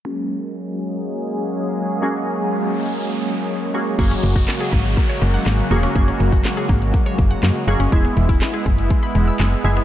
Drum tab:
CC |----------------|----------------|x---------------|----------------|
HH |----------------|----------------|xxxxxxxxxxxxxxox|xxxxxxxxxxxxxxox|
CP |----------------|----------------|----x-------x---|----x-------x---|
SD |----------------|----------------|----o-------o---|----o-------o---|
BD |----------------|----------------|o--o--o-o-------|o--o--o-o-o-----|

CC |----------------|
HH |xxxxxxxxxxxxxxox|
CP |----x-------x---|
SD |----o-------o---|
BD |o--o--o-o-------|